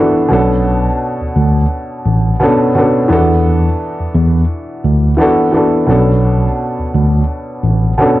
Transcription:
Already playing: upright piano E3 B3 D4 F#4
0.00 upright piano A4
0.28 tine electric piano B1, upright piano B2 B3 C#4 D4
0.33 upright piano A4
1.21 tine electric piano D2
1.36 tine electric piano D2
2.06 tine electric piano A1
2.40 upright piano B2 B3 C#4 D4
2.44 upright piano A4
2.75 upright piano B2 B3 C#4 D4
2.79 upright piano A4
3.08 tine electric piano E2, upright piano E3 B3 D4 F#4
3.13 upright piano A4
4.00 tine electric piano E2
4.15 tine electric piano E2
4.84 tine electric piano D2
5.17 upright piano E3 B3 D4 F#4
5.22 upright piano A4
5.52 upright piano E3 B3 D4 F#4
5.57 upright piano A4
5.86 tine electric piano B1, upright piano B2 B3 C#4 D4
5.91 upright piano A4
6.79 tine electric piano D2
6.94 tine electric piano D2
7.63 tine electric piano A1
7.97 upright piano B2 B3 C#4 D4
8.02 upright piano A4

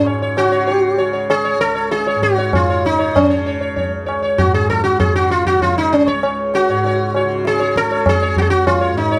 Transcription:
Already playing: tanpura C#2 G#2 C#3
0.06 sitar C#5, tabla na
0.22 sitar C#5
0.37 sitar F#4, tabla na
0.44 tanpura C#3
0.52 sitar C#5
0.67 sitar C#5, tabla tin
0.98 tanpura C#3, sitar C#5, tabla na
1.13 sitar C#5
1.30 sitar G#4, tabla na
1.45 sitar C#5
1.59 tanpura C#2, sitar A4
1.75 sitar C#5
1.91 sitar G#4, tabla te
2.07 sitar C#5, tabla te
2.15 tanpura G#2
2.22 sitar F#4, tabla ke
2.38 sitar C#5, tabla te
2.53 sitar F4, tabla na, tabla ge
2.69 tanpura C#3, sitar C#5
2.85 sitar D#4, tabla te
2.99 sitar C#5
3.16 sitar C#4, tabla na, tabla ge
3.27 tanpura C#3, sitar C#5
3.46 sitar C#5
3.61 sitar C#5
3.76 sitar C#5, tabla tin, tabla ge
3.86 tanpura C#2
4.06 sitar C#5, tabla na
4.22 sitar C#5
4.38 sitar F#4, tabla na, tabla ge
4.43 tanpura G#2
4.54 sitar G#4
4.69 sitar A4, tabla ge
4.84 sitar F#4
4.99 tanpura C#3, sitar G#4, tabla na, tabla ge
5.16 sitar F#4
5.30 sitar F4, tabla te
5.45 sitar F#4, tabla ge
5.55 tanpura C#3
5.62 sitar F4, tabla tin, tabla ge
5.78 sitar D#4
5.93 sitar C#4, tabla na
6.07 sitar C#5, tabla ke
6.13 tanpura C#2
6.23 sitar C#5, tabla na
6.54 sitar F#4, tabla na
6.69 tanpura G#2, sitar C#5
6.84 sitar C#5, tabla tin
7.15 sitar C#5, tabla na
7.25 tanpura C#3
7.45 sitar G#4, tabla te
7.59 sitar C#5, tabla te
7.76 sitar A4, tabla ke
7.82 tanpura C#3
7.91 sitar C#5, tabla te
8.06 sitar G#4, tabla na, tabla ge
8.22 sitar C#5
8.36 tanpura C#2, sitar F#4, tabla ge
8.42 sitar G#4
8.50 sitar F#4
8.67 sitar F4, tabla na, tabla ge
8.81 sitar C#5
8.92 tanpura G#2
8.97 sitar D#4, tabla te
9.11 sitar C#5

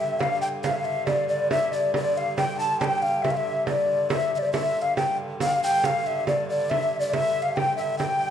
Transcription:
Already playing: hurdy-gurdy G2 D3, recorder E5
0.00 ocarina E5
0.19 recorder F5, ocarina G5, frame drum
0.23 ocarina F5
0.41 recorder G5, ocarina G5
0.62 recorder F5, ocarina F5, frame drum
0.70 recorder E5
0.77 recorder F5
0.85 ocarina E5
1.06 recorder D5, ocarina D5, frame drum
1.29 ocarina D5, recorder D5
1.50 recorder E5, ocarina E5, frame drum
1.72 recorder D5, ocarina D5
1.94 recorder D5, ocarina D5, frame drum
2.16 recorder F5, ocarina F5
2.37 recorder G5, ocarina G5, frame drum
2.58 recorder A5, ocarina A5
2.78 recorder G5, ocarina A5, frame drum
2.84 ocarina G5
3.02 ocarina F5, frame drum
3.22 recorder E5, ocarina E5, frame drum
3.31 ocarina F5
3.37 recorder E5, ocarina E5
3.46 frame drum
3.67 ocarina D5, recorder D5, frame drum
4.10 hurdy-gurdy G2 D3, ocarina E5, recorder E5, frame drum
4.35 ocarina D5 E5
4.39 recorder C5 D5
4.45 recorder D5
4.53 ocarina E5, recorder E5, frame drum
4.82 recorder F5, ocarina F5
4.96 recorder G5, ocarina G5, frame drum
5.40 recorder F5, ocarina F5, frame drum
5.47 recorder G5
5.54 recorder F5
5.64 ocarina G5
5.84 recorder F5, ocarina F5, frame drum
6.07 ocarina E5
6.27 recorder D5, ocarina D5, frame drum
6.49 recorder D5, ocarina D5
6.70 ocarina E5, recorder E5, frame drum
7.00 recorder D5, ocarina D5
7.13 recorder E5, ocarina E5, frame drum
7.42 recorder F5, ocarina F5
7.55 recorder G5, ocarina G5, frame drum
7.77 recorder E5, ocarina E5
7.98 recorder G5, ocarina G5, frame drum
8.21 frame drum

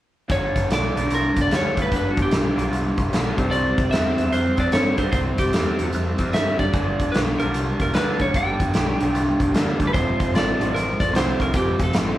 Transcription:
0.29 picked electric bass G1, overdriven electric guitar G2 D3 G3, tonewheel organ B3 D4 G4, lead electric guitar C#5, kick, closed hi-hat
0.56 picked electric bass G1, kick, closed hi-hat
0.70 picked electric bass B1, lead electric guitar D5, snare, closed hi-hat
0.96 picked electric bass B1, overdriven electric guitar G2 D3 G3, closed hi-hat
1.10 picked electric bass C2, closed hi-hat
1.15 lead electric guitar A#4
1.36 picked electric bass C2, kick, closed hi-hat
1.42 lead electric guitar D5
1.49 picked electric bass D2, overdriven electric guitar G2 D3, snare, closed hi-hat
1.53 overdriven electric guitar G3, lead electric guitar C#5
1.77 picked electric bass D2, kick, closed hi-hat
1.82 lead electric guitar B4
1.89 picked electric bass G1, overdriven electric guitar G2 D3 G3, kick, closed hi-hat
1.96 lead electric guitar B4
2.11 lead electric guitar F#4
2.17 picked electric bass G1, kick, closed hi-hat
2.22 lead electric guitar G4
2.31 picked electric bass B1, snare, closed hi-hat
2.55 picked electric bass B1, overdriven electric guitar D3 G3, closed hi-hat
2.59 overdriven electric guitar G2
2.72 picked electric bass C2, closed hi-hat
2.98 picked electric bass C2, kick, closed hi-hat
3.09 picked electric bass B1, overdriven electric guitar G2 D3 G3, closed hi-hat
3.14 snare
3.35 picked electric bass C2, overdriven electric guitar C3 G3, tonewheel organ E4 G4, kick, closed hi-hat
3.39 overdriven electric guitar C4, tonewheel organ C4
3.51 picked electric bass C2, lead electric guitar D5, closed hi-hat
3.78 picked electric bass C2, kick, closed hi-hat
3.91 picked electric bass E2, overdriven electric guitar C3 G3 C4, lead electric guitar E5, snare, closed hi-hat
4.18 picked electric bass E2, closed hi-hat
4.32 picked electric bass F2, lead electric guitar C5, closed hi-hat
4.55 picked electric bass F2, overdriven electric guitar C3 G3 C4, kick, closed hi-hat
4.60 lead electric guitar D5
4.72 picked electric bass G2, lead electric guitar C#5, snare, closed hi-hat
4.96 picked electric bass G2, overdriven electric guitar C3 G3 C4, lead electric guitar C5, kick, closed hi-hat
5.12 picked electric bass C2, lead electric guitar C5, kick, closed hi-hat
5.38 picked electric bass C2, lead electric guitar G4, kick, closed hi-hat
5.51 picked electric bass E2, overdriven electric guitar C3 G3 C4, snare, closed hi-hat
5.79 picked electric bass E2, closed hi-hat
5.93 picked electric bass F2, closed hi-hat
6.17 picked electric bass F2, overdriven electric guitar G3 C4, kick, closed hi-hat
6.21 overdriven electric guitar C3
6.33 picked electric bass G2, lead electric guitar E5, snare, closed hi-hat
6.59 picked electric bass G2, lead electric guitar D5, kick, closed hi-hat
6.72 picked electric bass G1, overdriven electric guitar G2 D3 G3, tonewheel organ B3 D4 G4, kick, closed hi-hat
7.00 picked electric bass G1, kick, closed hi-hat
7.12 picked electric bass B1, lead electric guitar B4, snare, closed hi-hat
7.39 picked electric bass B1, overdriven electric guitar G2 D3 G3, lead electric guitar A#4, closed hi-hat
7.54 picked electric bass C2, closed hi-hat
7.80 picked electric bass C2, lead electric guitar A#4, kick, closed hi-hat
7.92 picked electric bass D2, overdriven electric guitar G2 D3 G3, lead electric guitar B4, snare, closed hi-hat
8.19 picked electric bass D2, lead electric guitar C#5, kick, closed hi-hat
8.33 picked electric bass G1, overdriven electric guitar G2 D3 G3, lead electric guitar G5, kick, closed hi-hat
8.60 picked electric bass G1, kick, closed hi-hat
8.74 picked electric bass B1, snare, closed hi-hat
8.98 picked electric bass B1, overdriven electric guitar G2 D3 G3, closed hi-hat
9.14 picked electric bass C2, closed hi-hat
9.40 picked electric bass C2, kick, closed hi-hat
9.52 picked electric bass D2, overdriven electric guitar G2 D3 G3, snare, closed hi-hat
9.80 picked electric bass D2, kick, closed hi-hat
9.87 lead electric guitar B4
9.93 picked electric bass F1, overdriven electric guitar F2 C3 F3, tonewheel organ C4 F4 A4, lead electric guitar C5, kick, closed hi-hat
10.20 picked electric bass F1, kick, closed hi-hat
10.34 picked electric bass A1, lead electric guitar D5, snare, closed hi-hat
10.59 picked electric bass A1, overdriven electric guitar C3 F3, closed hi-hat
10.63 overdriven electric guitar F2
10.74 picked electric bass A1, lead electric guitar A#4, closed hi-hat
11.00 picked electric bass A1, lead electric guitar D5, kick, closed hi-hat
11.12 picked electric bass C2, overdriven electric guitar F2 C3 F3, closed hi-hat
11.16 lead electric guitar C5, snare
11.40 picked electric bass C2, lead electric guitar A#4, kick, closed hi-hat
11.52 picked electric bass F1, overdriven electric guitar F2 C3 F3, kick, closed hi-hat
11.56 lead electric guitar G4
11.79 picked electric bass F1, kick, closed hi-hat
11.83 lead electric guitar A4
11.93 picked electric bass A1, snare, closed hi-hat

